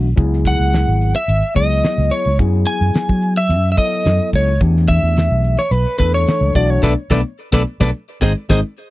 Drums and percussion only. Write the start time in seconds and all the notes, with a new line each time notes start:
0.18 kick, closed hi-hat
0.33 snare
0.45 kick, snare, closed hi-hat
0.73 snare, closed hi-hat
1.01 closed hi-hat
1.29 closed hi-hat
1.56 kick, closed hi-hat
1.84 snare, closed hi-hat
2.11 closed hi-hat
2.39 kick, closed hi-hat
2.67 closed hi-hat
2.95 snare, closed hi-hat
3.09 kick
3.22 closed hi-hat
3.50 closed hi-hat
3.78 kick, closed hi-hat
4.05 snare, closed hi-hat
4.33 kick, open hi-hat
4.61 kick, closed hi-hat
4.77 snare
4.89 kick, closed hi-hat
5.17 snare, closed hi-hat
5.44 closed hi-hat
5.72 closed hi-hat
6.00 kick, closed hi-hat
6.16 snare
6.28 snare, closed hi-hat
6.55 kick, closed hi-hat
6.83 kick, snare
7.11 kick, snare
7.53 kick, snare
7.81 kick, snare
8.22 kick, snare
8.50 kick, snare